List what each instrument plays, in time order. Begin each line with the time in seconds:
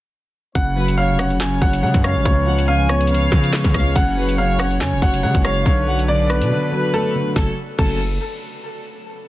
0.55 808-style bass F#1, grand piano C#3, brass ensemble F#3 C#4 G#4 C#5, upright piano F#5, kick, closed hi-hat
0.76 grand piano F#3, violin section B4
0.88 closed hi-hat
0.98 grand piano C#3, violin section C#5, upright piano F5
1.09 808-style bass F1
1.19 grand piano C#4, upright piano F#5, cross-stick, closed hi-hat
1.30 closed hi-hat
1.35 808-style bass F#1
1.40 grand piano C#3, violin section C#5, upright piano G#5, snare, clap, closed hi-hat
1.61 808-style bass F#1, grand piano F#3, upright piano F#5, kick
1.73 closed hi-hat
1.83 808-style bass C#3, grand piano G#3, upright piano F#5
1.94 808-style bass F#2, kick, closed hi-hat
2.04 grand piano C#3, upright piano C#5, violin section F5, cross-stick
2.15 808-style bass A1
2.25 808-style bass C#2, grand piano C#3, brass ensemble F3 B3, upright piano C#5, kick, closed hi-hat
2.47 grand piano F3, violin section F#5
2.59 closed hi-hat
2.68 grand piano C#3, upright piano F5, violin section G#5
2.89 grand piano B3, upright piano C#5, cross-stick, closed hi-hat
3.01 closed hi-hat
3.07 grand piano C#3, violin section F5, closed hi-hat
3.14 closed hi-hat
3.32 808-style bass C#3, grand piano F3, kick
3.44 closed hi-hat
3.53 grand piano G#3, snare, clap
3.64 808-style bass C#3, kick, closed hi-hat
3.69 closed hi-hat
3.74 808-style bass C#2, grand piano C#3, violin section F5, kick, cross-stick, closed hi-hat, open hi-hat
3.80 closed hi-hat
3.96 808-style bass F#1, grand piano C#3, brass ensemble F#3 C#4, upright piano F#5, kick, closed hi-hat
4.17 grand piano F#3, violin section B4
4.29 closed hi-hat
4.38 grand piano C#3, violin section C#5, upright piano F5
4.59 grand piano C#4, upright piano F#5, cross-stick, closed hi-hat
4.71 closed hi-hat
4.81 808-style bass F#2, grand piano C#3, violin section C#5, upright piano G#5, snare, clap, closed hi-hat
4.92 808-style bass F#1
5.02 808-style bass F1, grand piano F#3, upright piano F#5, kick
5.14 closed hi-hat
5.23 808-style bass C#3, grand piano G#3, upright piano F#5
5.35 808-style bass F#1, kick, closed hi-hat
5.44 grand piano C#3, upright piano C#5, violin section F5, cross-stick
5.66 808-style bass B1, grand piano D3, brass ensemble D4 A4 B4, upright piano C#5, kick, closed hi-hat
5.87 grand piano F#3, violin section F#5
5.99 closed hi-hat
6.08 grand piano D3, violin section D5, upright piano D5
6.30 grand piano B3, upright piano B4, cross-stick, closed hi-hat
6.41 808-style bass B2, closed hi-hat
6.51 grand piano D3
6.72 grand piano F#3, violin section B4
6.94 grand piano A3, upright piano A4
7.15 grand piano D3
7.36 808-style bass F#1, grand piano C#3 F#3 A3 C#4, brass ensemble F#3 C#4 A4 C#5, upright piano A4, violin section A4, kick, snare
7.79 808-style bass F#1, grand piano C#3 F#3 A3 C#4, upright piano A4, violin section A4, kick, crash